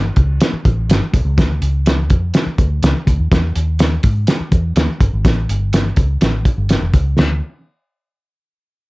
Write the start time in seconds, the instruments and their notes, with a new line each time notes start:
0.16 fingered electric bass C#2, kick, closed hi-hat
0.41 snare, closed hi-hat
0.53 muted fingered electric bass stroke
0.65 fingered electric bass A1, kick, closed hi-hat
0.89 fingered electric bass G1, snare, closed hi-hat
1.13 fingered electric bass C2, kick, closed hi-hat
1.25 fingered electric bass C#2
1.37 fingered electric bass D2, kick, snare, closed hi-hat
1.61 fingered electric bass C#2, closed hi-hat
1.86 snare, closed hi-hat
2.10 fingered electric bass F2, kick, closed hi-hat
2.34 snare, closed hi-hat
2.46 muted fingered electric bass stroke
2.58 fingered electric bass D2, kick, closed hi-hat
2.82 fingered electric bass C#2, snare, closed hi-hat
3.07 fingered electric bass D2, kick, closed hi-hat
3.19 fingered electric bass D#2
3.31 fingered electric bass E2, kick, snare, closed hi-hat
3.56 fingered electric bass D#2, closed hi-hat
3.79 snare, closed hi-hat
4.03 fingered electric bass G#2, kick, closed hi-hat
4.27 snare, closed hi-hat
4.40 muted fingered electric bass stroke
4.51 fingered electric bass E2, kick, closed hi-hat
4.76 fingered electric bass D#2, snare, closed hi-hat
5.00 fingered electric bass G1, kick, closed hi-hat
5.13 fingered electric bass G#1
5.25 fingered electric bass A1, kick, snare, closed hi-hat
5.49 fingered electric bass G1, closed hi-hat
5.73 snare, closed hi-hat
5.96 fingered electric bass C#2, kick, closed hi-hat
6.21 fingered electric bass A1, snare, closed hi-hat
6.45 kick, closed hi-hat
6.58 fingered electric bass G1
6.69 snare, closed hi-hat
6.81 fingered electric bass F1
6.93 fingered electric bass C#2, kick, closed hi-hat
7.17 fingered electric bass D2, snare, crash